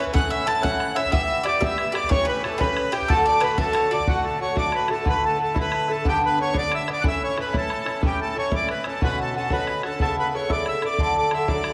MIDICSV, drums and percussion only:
0, 0, Header, 1, 2, 480
1, 0, Start_track
1, 0, Key_signature, 2, "major"
1, 0, Tempo, 328947
1, 193, Time_signature, 6, 3, 24, 8
1, 17119, End_track
2, 0, Start_track
2, 0, Title_t, "Bodhran"
2, 96, Note_on_c, 9, 64, 26
2, 218, Note_off_c, 9, 64, 0
2, 218, Note_on_c, 9, 64, 88
2, 364, Note_off_c, 9, 64, 0
2, 458, Note_on_c, 9, 64, 26
2, 604, Note_off_c, 9, 64, 0
2, 698, Note_on_c, 9, 64, 65
2, 844, Note_off_c, 9, 64, 0
2, 935, Note_on_c, 9, 64, 80
2, 1081, Note_off_c, 9, 64, 0
2, 1171, Note_on_c, 9, 64, 60
2, 1317, Note_off_c, 9, 64, 0
2, 1406, Note_on_c, 9, 64, 65
2, 1537, Note_off_c, 9, 64, 0
2, 1537, Note_on_c, 9, 64, 24
2, 1647, Note_off_c, 9, 64, 0
2, 1647, Note_on_c, 9, 64, 77
2, 1793, Note_off_c, 9, 64, 0
2, 1897, Note_on_c, 9, 64, 22
2, 2042, Note_off_c, 9, 64, 0
2, 2125, Note_on_c, 9, 64, 61
2, 2271, Note_off_c, 9, 64, 0
2, 2360, Note_on_c, 9, 64, 91
2, 2506, Note_off_c, 9, 64, 0
2, 2598, Note_on_c, 9, 64, 70
2, 2744, Note_off_c, 9, 64, 0
2, 2847, Note_on_c, 9, 64, 75
2, 2971, Note_off_c, 9, 64, 0
2, 2971, Note_on_c, 9, 64, 29
2, 3077, Note_off_c, 9, 64, 0
2, 3077, Note_on_c, 9, 64, 95
2, 3223, Note_off_c, 9, 64, 0
2, 3327, Note_on_c, 9, 64, 26
2, 3472, Note_off_c, 9, 64, 0
2, 3562, Note_on_c, 9, 64, 64
2, 3708, Note_off_c, 9, 64, 0
2, 3802, Note_on_c, 9, 64, 87
2, 3948, Note_off_c, 9, 64, 0
2, 4036, Note_on_c, 9, 64, 68
2, 4182, Note_off_c, 9, 64, 0
2, 4275, Note_on_c, 9, 64, 68
2, 4399, Note_off_c, 9, 64, 0
2, 4399, Note_on_c, 9, 64, 27
2, 4518, Note_off_c, 9, 64, 0
2, 4518, Note_on_c, 9, 64, 84
2, 4664, Note_off_c, 9, 64, 0
2, 4755, Note_on_c, 9, 64, 24
2, 4901, Note_off_c, 9, 64, 0
2, 4979, Note_on_c, 9, 64, 63
2, 5124, Note_off_c, 9, 64, 0
2, 5221, Note_on_c, 9, 64, 88
2, 5367, Note_off_c, 9, 64, 0
2, 5467, Note_on_c, 9, 64, 68
2, 5613, Note_off_c, 9, 64, 0
2, 5834, Note_on_c, 9, 64, 28
2, 5943, Note_off_c, 9, 64, 0
2, 5943, Note_on_c, 9, 64, 78
2, 6089, Note_off_c, 9, 64, 0
2, 6181, Note_on_c, 9, 64, 24
2, 6327, Note_off_c, 9, 64, 0
2, 6662, Note_on_c, 9, 64, 79
2, 6808, Note_off_c, 9, 64, 0
2, 6891, Note_on_c, 9, 64, 57
2, 7037, Note_off_c, 9, 64, 0
2, 7124, Note_on_c, 9, 64, 59
2, 7270, Note_off_c, 9, 64, 0
2, 7379, Note_on_c, 9, 64, 71
2, 7525, Note_off_c, 9, 64, 0
2, 7632, Note_on_c, 9, 64, 22
2, 7778, Note_off_c, 9, 64, 0
2, 8111, Note_on_c, 9, 64, 81
2, 8256, Note_off_c, 9, 64, 0
2, 8343, Note_on_c, 9, 64, 59
2, 8489, Note_off_c, 9, 64, 0
2, 8829, Note_on_c, 9, 64, 73
2, 8975, Note_off_c, 9, 64, 0
2, 9071, Note_on_c, 9, 64, 23
2, 9216, Note_off_c, 9, 64, 0
2, 9548, Note_on_c, 9, 64, 83
2, 9694, Note_off_c, 9, 64, 0
2, 9800, Note_on_c, 9, 64, 62
2, 9946, Note_off_c, 9, 64, 0
2, 10038, Note_on_c, 9, 64, 67
2, 10184, Note_off_c, 9, 64, 0
2, 10270, Note_on_c, 9, 64, 81
2, 10416, Note_off_c, 9, 64, 0
2, 10521, Note_on_c, 9, 64, 23
2, 10667, Note_off_c, 9, 64, 0
2, 10762, Note_on_c, 9, 64, 59
2, 10908, Note_off_c, 9, 64, 0
2, 11003, Note_on_c, 9, 64, 86
2, 11148, Note_off_c, 9, 64, 0
2, 11238, Note_on_c, 9, 64, 60
2, 11384, Note_off_c, 9, 64, 0
2, 11475, Note_on_c, 9, 64, 65
2, 11621, Note_off_c, 9, 64, 0
2, 11713, Note_on_c, 9, 64, 84
2, 11859, Note_off_c, 9, 64, 0
2, 11959, Note_on_c, 9, 64, 25
2, 12105, Note_off_c, 9, 64, 0
2, 12426, Note_on_c, 9, 64, 86
2, 12572, Note_off_c, 9, 64, 0
2, 12675, Note_on_c, 9, 64, 63
2, 12821, Note_off_c, 9, 64, 0
2, 12903, Note_on_c, 9, 64, 67
2, 13049, Note_off_c, 9, 64, 0
2, 13159, Note_on_c, 9, 64, 79
2, 13305, Note_off_c, 9, 64, 0
2, 13408, Note_on_c, 9, 64, 23
2, 13554, Note_off_c, 9, 64, 0
2, 13866, Note_on_c, 9, 64, 80
2, 14012, Note_off_c, 9, 64, 0
2, 14116, Note_on_c, 9, 64, 54
2, 14262, Note_off_c, 9, 64, 0
2, 14349, Note_on_c, 9, 64, 55
2, 14495, Note_off_c, 9, 64, 0
2, 14587, Note_on_c, 9, 64, 70
2, 14733, Note_off_c, 9, 64, 0
2, 14833, Note_on_c, 9, 64, 21
2, 14979, Note_off_c, 9, 64, 0
2, 15318, Note_on_c, 9, 64, 69
2, 15464, Note_off_c, 9, 64, 0
2, 15553, Note_on_c, 9, 64, 54
2, 15699, Note_off_c, 9, 64, 0
2, 15792, Note_on_c, 9, 64, 61
2, 15938, Note_off_c, 9, 64, 0
2, 16025, Note_on_c, 9, 64, 68
2, 16171, Note_off_c, 9, 64, 0
2, 16265, Note_on_c, 9, 64, 22
2, 16411, Note_off_c, 9, 64, 0
2, 16507, Note_on_c, 9, 64, 58
2, 16653, Note_off_c, 9, 64, 0
2, 16753, Note_on_c, 9, 64, 82
2, 16899, Note_off_c, 9, 64, 0
2, 16985, Note_on_c, 9, 64, 62
2, 17119, Note_off_c, 9, 64, 0
2, 17119, End_track
0, 0, End_of_file